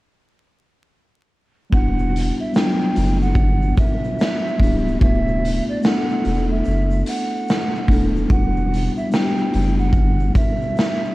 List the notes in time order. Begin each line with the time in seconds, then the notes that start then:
1.70 E1 G3 B3 D4 F#5, kick, shaker
1.74 E4 F#4
1.99 shaker
2.16 closed hi-hat, shaker
2.40 E5
2.52 G3 B3 D4 G5, shaker
2.56 E4 F4, snare
2.64 F#3
2.80 shaker
2.96 F#1, closed hi-hat, shaker
3.22 F#5, shaker
3.35 G1, kick, shaker
3.62 shaker
3.77 E5, kick, closed hi-hat, shaker
4.04 shaker
4.19 snare, shaker
4.47 shaker
4.58 C#1 G3 B3 D4, kick
4.62 E4 G4, closed hi-hat, shaker
4.88 shaker
4.99 D1 A3 B3 D4 E5, kick, shaker
5.03 E4 F#4
5.28 shaker
5.45 closed hi-hat, shaker
5.69 D5
5.81 A3 B3 D4 F#5, snare, shaker
5.85 E4 A4
6.09 shaker
6.25 E1, closed hi-hat, shaker
6.51 E5
6.65 F#1, shaker
6.91 shaker
7.06 F#5, closed hi-hat, shaker
7.48 snare, shaker
7.76 shaker
7.87 D#1 A3 B3 D4, kick
7.91 E4 A4, closed hi-hat, shaker
8.16 shaker
8.27 E1 G3 B3 D4 F#5, kick, shaker
8.32 E4 F#4
8.56 shaker
8.74 closed hi-hat, shaker
8.97 E5, shaker
9.09 G3 B3 D4 G5, shaker
9.14 E4 F#4, snare
9.22 G4
9.38 shaker
9.54 F#1, closed hi-hat, shaker
9.79 F#5, shaker
9.93 G1, kick, shaker
10.20 shaker
10.35 E5, kick, closed hi-hat, shaker
10.62 shaker
10.77 snare, shaker
11.05 shaker